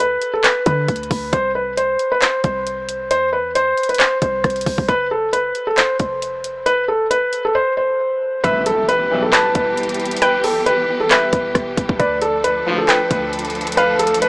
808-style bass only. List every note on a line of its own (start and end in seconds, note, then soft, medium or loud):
0.00 0.18 D2 loud
0.66 0.88 D3 loud
0.88 1.10 D2 loud
1.11 1.32 D2 loud
1.33 1.97 C2 loud
2.44 3.12 C2 loud
3.11 3.74 E2 loud
4.22 4.43 C2 loud
4.44 4.65 C2 loud
4.66 4.78 C2 loud
4.78 4.88 C2 loud
4.89 5.53 F1 loud
6.00 7.29 F1 loud
8.44 9.08 E1 loud
9.55 10.23 E1 loud
10.22 10.85 G1 loud
11.33 11.54 E1 loud
11.55 11.77 E1 loud
11.77 11.89 E1 loud
11.89 11.99 E1 loud
12.00 12.64 D2 loud
13.11 14.29 D2 loud